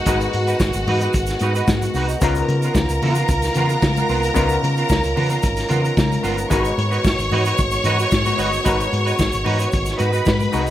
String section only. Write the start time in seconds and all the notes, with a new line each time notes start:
Already playing: F#4 F#5
2.21 A#4 A#5
6.50 C#5 C#6
10.00 B4 B5